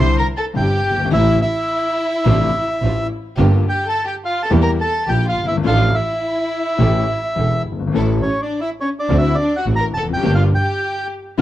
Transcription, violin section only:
0.00 0.16 C5 medium
0.18 0.26 A#4 medium
0.37 0.45 A4 medium
0.57 1.09 G4 medium
1.13 1.39 E4 medium
1.41 3.07 E4 medium
3.68 3.85 G4 medium
3.86 4.04 A4 medium
4.05 4.14 G4 medium
4.25 4.42 F4 medium
4.44 4.52 A4 medium
4.61 4.70 A#4 medium
4.80 5.06 A4 medium
5.08 5.26 G4 medium
5.27 5.45 F4 medium
5.46 5.54 E4 medium
5.63 5.91 F4 medium
5.93 7.62 E4 medium
8.22 8.41 C#4 medium
8.42 8.60 D4 medium
8.60 8.69 E4 medium
8.81 8.90 C#4 medium
9.00 9.18 D4 medium
9.20 9.38 E4 medium
9.39 9.57 D4 medium
9.58 9.66 F#4 medium
9.78 9.86 A#4 medium
9.97 10.05 A4 medium
10.17 10.33 G4 medium
10.36 10.44 F4 medium
10.56 11.08 G4 medium
11.38 11.41 F4 medium

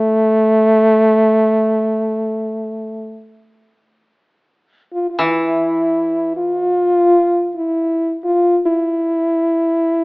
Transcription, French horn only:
0.00 3.23 A3 medium
4.93 5.09 F4 medium
5.10 5.24 F4 medium
5.23 6.36 E4 medium
6.37 7.50 F4 medium
7.56 8.19 E4 medium
8.24 8.59 F4 medium
8.65 10.04 E4 medium

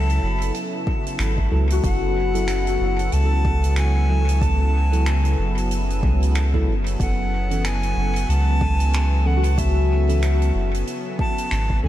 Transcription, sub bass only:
0.00 0.20 C#2 loud
0.23 0.51 F#1 loud
1.19 1.48 G#1 medium
1.51 1.80 C#2 medium
1.84 2.78 F#1 medium
2.80 3.09 F#1 loud
3.12 5.36 C#2 loud
5.38 6.04 F#1 loud
6.03 6.69 C#2 loud
6.67 6.96 F#1 medium
7.00 7.94 F#1 medium
7.96 8.25 F#1 loud
8.28 10.52 C#2 loud
10.54 10.84 F#1 loud
11.51 11.80 G#1 medium
11.84 11.88 C#2 medium

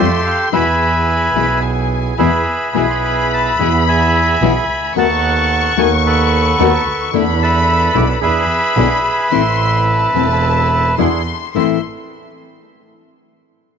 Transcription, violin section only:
0.00 0.53 C6 loud
0.53 1.06 B5 loud
1.07 1.59 B5 loud
1.62 2.19 G#5 medium
2.19 2.44 B5 medium
2.46 4.91 B5 loud
4.94 7.13 C#6 loud
7.13 8.21 B5 loud
8.23 9.28 B5 loud
9.31 9.87 C6 loud
9.87 10.94 A5 loud
10.98 11.53 C6 medium
11.54 11.80 C6 medium

